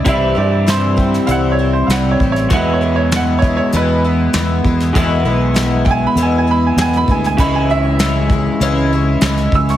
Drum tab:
HH |x---x---x---x---|x---x---x---x---|x---x---x---x---|x---x---x---x---|
SD |----o--o----o--o|----o-------o--o|----o-------oo-o|----o-------oo-o|
BD |o-----o-------o-|o-----o-------o-|o-----o-------o-|o-----o-------o-|